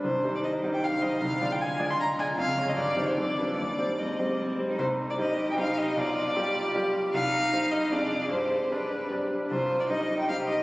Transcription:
<<
  \new Staff \with { instrumentName = "Violin" } { \time 3/4 \key c \minor \tempo 4 = 153 c''8. d''16 ees''8. g''16 f''8 ees''8 | f''8. g''16 aes''8. c'''16 bes''8 aes''8 | f''8. ees''16 d''8. c''16 d''4 | d''4 ees''4 r4 |
c''8. d''16 ees''8. g''16 f''8 ees''8 | d''2~ d''8 r8 | f''4. ees''8 d''4 | c''4 b'4 r4 |
c''8. d''16 ees''8. g''16 f''8 ees''8 | }
  \new Staff \with { instrumentName = "Cello" } { \time 3/4 \key c \minor ees2. | d2. | des4 ees4 g4~ | g4 aes8. bes16 c'8. ees'16 |
r4 g'4 ees'4 | f'4 g'2 | ees'2 aes'4 | g'2~ g'8 r8 |
f'4 ees'4 g'4 | }
  \new Staff \with { instrumentName = "Grand piano" } { \time 3/4 \key c \minor c,8 <g ees' c''>4 <g ees' c''>4 <g ees' c''>8 | c,8 <aes f' d''>4 <aes f' d''>4 <aes f' d''>8 | f,8 <aes f' des''>8 g,8 <g ees' c''>8 f,8 <g d' b'>8 | ees,8 <g c' c''>4 <g c' c''>4 <g c' c''>8 |
c,4 <g ees' c''>4 <g ees' c''>4 | b,,4 <g f' g'>4 <g f' g'>4 | c,4 <g ees' c''>4 <f, aes d' d''>4 | g,4 <g d' d''>4 <g d' d''>4 |
c,4 <g ees' c''>4 <g ees' c''>4 | }
>>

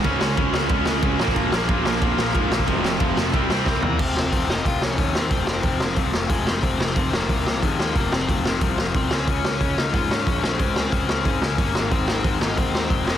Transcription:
<<
  \new Staff \with { instrumentName = "Lead electric guitar" } { \time 4/4 \key f \minor \tempo 4 = 182 r1 | r1 | r2. <bes bes'>4 | <c' c''>4. <ees' ees''>8 <f' f''>8 <des' des''>4 <c' c''>8~ |
<c' c''>8 <c' c''>2 r8 <aes aes'>4 | <c' c''>4. <bes bes'>4. <aes aes'>4 | <bes bes'>8 <c' c''>2 r8 <c' c''>4 | <des' des''>4. <ees' ees''>8 <f' f''>8 <des' des''>4 <c' c''>8~ |
<c' c''>8 <c' c''>2 r8 <bes bes'>4 | <c' c''>4. <ees' ees''>8 <c' c''>4. <c' c''>8 | }
  \new Staff \with { instrumentName = "Distorted electric guitar" } { \clef bass \time 4/4 \key f \minor <des aes des'>2.~ <des aes des'>8 <bes, f bes>8~ | <bes, f bes>2.~ <bes, f bes>8 r8 | <f, c f>2 <c g c'>2 | r1 |
r1 | r1 | r1 | r1 |
r1 | r1 | }
  \new Staff \with { instrumentName = "Overdriven electric guitar" } { \clef bass \time 4/4 \key f \minor <des aes des'>8 <des aes des'>8 <des aes des'>8 <des aes des'>8 <des aes des'>8 <des aes des'>8 <des aes des'>8 <bes, f bes>8 | <bes, f bes>8 <bes, f bes>8 <bes, f bes>8 <bes, f bes>8 <bes, f bes>8 <bes, f bes>8 <bes, f bes>8 <bes, f bes>8 | <f, c f>8 <f, c f>8 <f, c f>8 <f, c f>8 <c g c'>8 <c g c'>8 <c g c'>8 <c g c'>8 | r1 |
r1 | r1 | r1 | r1 |
r1 | r1 | }
  \new Staff \with { instrumentName = "Distorted electric guitar" } { \clef bass \time 4/4 \key f \minor <des aes des'>8 <des aes des'>8 <des aes des'>8 <des aes des'>8 <des aes des'>8 <des aes des'>8 <des aes des'>8 <bes, f bes>8 | <bes, f bes>8 <bes, f bes>8 <bes, f bes>8 <bes, f bes>8 <bes, f bes>8 <bes, f bes>8 <bes, f bes>8 <bes, f bes>8 | <f, c f>8 <f, c f>8 <f, c f>8 <f, c f>8 <c g c'>8 <c g c'>8 <c g c'>8 <c g c'>8 | <f, c f>4 <f, c f>8 <f, c f>8 <f, c f>4 <f, c f>8 <f, c f>8 |
<f, c f>4 <f, c f>8 <f, c f>8 <f, c f>4 <f, c f>8 <f, c f>8 | <f, c f>4 <f, c f>8 <f, c f>8 <f, c f>4 <f, c f>8 <f, c f>8 | <f, c f>4 <f, c f>8 <f, c f>8 <f, c f>4 <f, c f>8 <des aes des'>8 | <des aes des'>4 <des aes des'>8 <des aes des'>8 <des aes des'>4 <des aes des'>8 <des aes des'>8 |
<des aes des'>4 <des aes des'>8 <des aes des'>8 <des aes des'>4 <des aes des'>8 <aes, ees aes>8 | <aes, ees aes>4 <aes, ees aes>8 <aes, ees aes>8 <aes, ees aes>4 <aes, ees aes>8 <aes, ees aes>8 | }
  \new Staff \with { instrumentName = "Picked electric bass" } { \clef bass \time 4/4 \key f \minor des,8 des,8 des,8 des,8 des,8 des,8 des,8 bes,,8 | bes,,8 bes,,8 bes,,8 bes,,8 bes,,8 bes,,8 aes,8 bes,,8 | f,,8 f,,8 f,,8 f,,8 c,8 c,8 c,8 e,8 | f,,8 f,,8 f,,8 f,,8 c,4 ees,4 |
f,,4 f,,8 f,,8 c,8 f,,8 f,,4 | f,,8 f,,8 f,,8 f,,8 c,4 ees,4 | f,,4 f,,8 f,,8 c,8 f,,8 c,8 des,8 | des,8 des,8 des,8 des,8 aes,4 bes,,4 |
des,4 des,8 des,8 aes,8 des,8 g,,8 aes,,8 | aes,,8 aes,,8 aes,,8 aes,,8 ees,4 f,,4 | }
  \new DrumStaff \with { instrumentName = "Drums" } \drummode { \time 4/4 <bd cymr>8 sn8 <bd cymr>8 sn8 <bd cymr>8 sn8 <bd cymr>8 sn16 bd16 | <bd cymr>8 sn8 <bd cymr>8 sn8 <bd cymr>8 sn8 <bd cymr>8 sn16 bd16 | <bd cymr>8 sn8 <bd cymr>8 sn8 <bd cymr>8 sn8 <bd sn>8 tomfh8 | <cymc bd>8 sn8 <hho bd>8 sn8 <hho bd>8 sn8 <hho bd>8 sn8 |
<hho bd>8 sn8 <hho bd>8 sn8 <hho bd>8 sn8 <hho bd>8 sn8 | <hho bd>8 sn8 <hho bd>8 sn8 <hho bd>8 sn8 <hho bd>8 sn8 | <hho bd>8 sn8 <hho bd>8 sn8 <hho bd>8 sn8 <hho bd>8 sn8 | <hho bd>8 sn8 <hho bd>8 sn8 <hho bd>8 sn8 <hho bd>8 sn8 |
<hho bd>8 sn8 <hho bd>8 sn8 <hho bd>8 sn8 <hho bd>8 sn8 | <hho bd>8 sn8 <hho bd>8 sn8 <hho bd>8 sn8 <hho bd>8 sn8 | }
>>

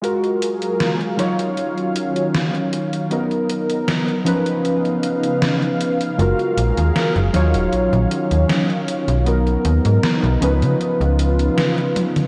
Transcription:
<<
  \new Staff \with { instrumentName = "Synth keys" } { \time 4/4 \key fis \major \tempo 4 = 78 <gis eis' fis' ais'>4. <fis dis' eis' cis''>2~ <fis dis' eis' cis''>8 | <fis b dis' ais'>4. <eis cis' dis' b'>2~ <eis cis' dis' b'>8 | <gis eis' fis' ais'>4. <fis dis' eis' cis''>2~ <fis dis' eis' cis''>8 | <fis b dis' ais'>4. <eis cis' dis' b'>2~ <eis cis' dis' b'>8 | }
  \new Staff \with { instrumentName = "Analog synth pad" } { \time 4/4 \key fis \major << { <fis ais' eis''>4. <dis fis cis'>2~ <dis fis cis'>8 | <dis' ais'>4. <cis eis''>2~ <cis eis''>8 | <fis ais'>4. <dis fis cis'>2~ <dis fis cis'>8 | <dis' ais'>4. <cis eis'>2~ <cis eis'>8 | } \\ { gis'4. r2 r8 | b4. dis'2~ dis'8 | gis'4. r2 r8 | b1 | } >> }
  \new Staff \with { instrumentName = "FM bass" } { \clef bass \time 4/4 \key fis \major r1 | r1 | fis,,16 r16 ais,,16 dis,16 r16 fis,,16 dis,16 dis,,16 ais,,16 ais,,16 r16 dis,16 r8. b,,16~ | b,,8 dis,16 gis,16 r16 b,,16 cis,16 cis16 r16 cis,8. r4 | }
  \new DrumStaff \with { instrumentName = "Drums" } \drummode { \time 4/4 hh16 hh16 hh16 hh16 <hh sn>16 hh16 <hh sn>16 hh16 hh16 hh16 hh16 hh16 <hh sn>16 hh16 hh16 hh16 | hh16 hh16 hh16 hh16 <hh sn>16 hh16 hh16 hh16 hh16 hh16 hh16 hh16 <hh sn>16 hh16 hh16 hh16 | hh16 hh16 hh16 hh16 <hh sn>16 hh16 <hh sn>16 hh16 hh16 hh16 hh16 hh16 <hh sn>16 hh16 hh16 hh16 | hh16 hh16 hh16 hh16 <hh sn>16 hh16 hh16 hh16 hh16 hh16 hh16 hh16 <hh sn>16 hh16 <hh tommh>16 <hh toml>16 | }
>>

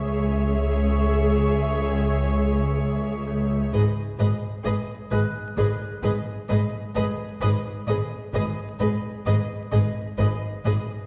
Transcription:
<<
  \new Staff \with { instrumentName = "Harp" } { \time 4/4 \key des \lydian \tempo 4 = 65 r2 <aes'' aes'''>4. g'''8~ | g'''4. ges'''2~ ges'''8~ | ges'''2.~ ges'''8 ees'''8 | }
  \new Staff \with { instrumentName = "Violin section" } { \time 4/4 \key des \lydian fes''1 | ees''8 ees''8 ees''8 ees''8 ees''8 ees''8 ees''8 ees''8 | ees''8 ees''8 ees''8 ees''8 ees''8 ees''8 ees''8 ees''8 | }
  \new Staff \with { instrumentName = "Violin section" } { \time 4/4 \key des \lydian des''1 | ces''8 ces''8 ces''8 ces''8 ces''8 ces''8 ces''8 ces''8 | ces''8 ces''8 ces''8 ces''8 ces''8 ces''8 ces''8 ces''8 | }
  \new Staff \with { instrumentName = "Viola section" } { \time 4/4 \key des \lydian aes'1 | aes'8 aes'8 aes'8 aes'8 aes'8 aes'8 aes'8 aes'8 | aes'8 aes'8 aes'8 aes'8 aes'8 aes'8 aes'8 aes'8 | }
  \new Staff \with { instrumentName = "Cello section" } { \clef bass \time 4/4 \key des \lydian des,1 | aes,8 aes,8 aes,8 aes,8 aes,8 aes,8 aes,8 aes,8 | aes,8 aes,8 aes,8 aes,8 aes,8 aes,8 aes,8 aes,8 | }
  \new Staff \with { instrumentName = "Double bass section" } { \clef bass \time 4/4 \key des \lydian des,1 | aes,,8 aes,,8 aes,,8 aes,,8 aes,,8 aes,,8 aes,,8 aes,,8 | aes,,8 aes,,8 aes,,8 aes,,8 aes,,8 aes,,8 aes,,8 aes,,8 | }
>>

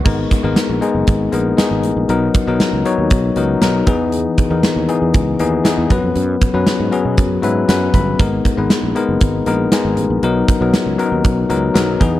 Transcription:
<<
  \new Staff \with { instrumentName = "Tine electric piano" } { \time 4/4 \key gis \minor \tempo 4 = 118 << { r1 | r1 | r1 | r2 r8 e''8 fis''8 b''8 |
r1 | r1 | } \\ { <gis b dis' ais'>8. <gis b dis' ais'>8. <gis b dis' gis'>4 <gis b dis' ais'>8 <gis b dis' gis'>4 | <fis b dis' ais'>8. <fis b dis' ais'>8. <fis b dis' cis''>4 <fis b dis' ais'>8 <fis b dis' ais'>8 <e b dis' gis'>8~ | <e b dis' gis'>8. <e b dis' ais'>8. <e b dis' gis'>4 <e b dis' gis'>8 <e b dis' gis'>8 <fis b cis' b'>8~ | <fis b cis' b'>8. <fis b cis' b'>8. <fis b cis' gis'>4 <fis b cis' b'>8 <fis b cis' b'>4 |
<gis b dis' ais'>8. <gis b dis' b'>8. <gis b dis' ais'>4 <gis b dis' ais'>8 <gis b dis' gis'>4 | <fis b dis' ais'>8. <fis b dis' ais'>8. <fis b cis' dis' ais'>4 <fis b dis' ais'>8 <fis b dis' ais'>8 <e b dis' gis'>8 | } >> }
  \new Staff \with { instrumentName = "Fretless electric bass" } { \clef bass \time 4/4 \key gis \minor gis,,8 r16 gis,,16 r16 ais,,16 r16 fis,,16 gis,,8 ais,,8 r16 gis,,16 a,,16 ais,,16 | b,,8 r16 b,,16 r16 cis,16 r16 dis,16 b,,8 cis,8 b,,8 e,8~ | e,8 r16 e,16 r16 dis,16 r16 e,16 cis,8 dis,8 r16 e,16 fis,16 eis,16 | fis,8 r16 fis,16 r16 gis,16 r16 b,16 fis,8 gis,8 fis,8 g,,8 |
gis,,8 r16 gis,,16 r16 ais,,16 r16 fis,,16 gis,,8 ais,,8 r16 gis,,16 a,,16 ais,,16 | b,,8 r16 b,,16 r16 cis,16 r16 dis,16 b,,8 cis,8 b,,8 e,8 | }
  \new DrumStaff \with { instrumentName = "Drums" } \drummode { \time 4/4 <cymc bd>8 <hh bd>8 <hh sn>8 hh8 <hh bd>8 hh8 <hh sn>8 hh8 | hh8 <hh bd>8 <hh sn>8 hh8 <hh bd>8 hh8 <hh sn>8 <hh bd>8 | hh8 <hh bd>8 <hh sn>8 hh8 <hh bd>8 hh8 <hh sn>8 <hh bd>8 | hh8 <hh bd>8 <hh sn>8 hh8 <hh bd>8 hh8 <hh sn>8 <hh bd>8 |
<hh bd>8 <hh bd>8 <hh sn>8 hh8 <hh bd>8 hh8 <hh sn>8 hh8 | hh8 <hh bd>8 <hh sn>8 hh8 <hh bd>8 hh8 <hh sn>8 <hh bd>8 | }
>>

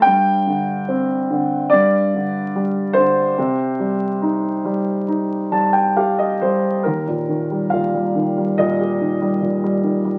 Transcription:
<<
  \new Staff \with { instrumentName = "Grand piano" } { \time 4/4 \key c \minor \tempo 4 = 72 << { r1 | r2 r8 a''16 g''16 f''16 ees''16 c''8 | \key ees \major r1 | } \\ { g''2 d''4. c''8~ | c''2. r4 | bes'4 f''4 ees''2 | } >> }
  \new Staff \with { instrumentName = "Grand piano" } { \clef bass \time 4/4 \key c \minor g,8 d8 c'8 d8 g,8 d8 g8 d8 | c8 g8 ees'8 g8 ees'8 g8 g'8 g8 | \key ees \major ees,16 bes,16 ees16 g16 bes,16 g16 ees16 g16 bes,16 g'16 ees16 g16 bes,16 g16 ees16 g16 | }
>>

